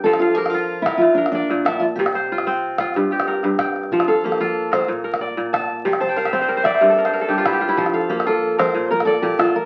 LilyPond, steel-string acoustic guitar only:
\new Staff \with { instrumentName = "Steel-string acoustic guitar" } { \time 12/8 \key f \major \tempo 4. = 124 a'8 f'8 g'8 f'4 e'8 f'8 d'8 d'4 e'8 f'8 | g'4 r1 r4 | f'8 a'8 g'8 a'4 c''8 r2. | g'8 c''8 bes'8 c''4 e''8 r2. |
f'8 a'8 g'8 a'4 c''4 bes'8 a'8 g'8 f'8 bes'8 | }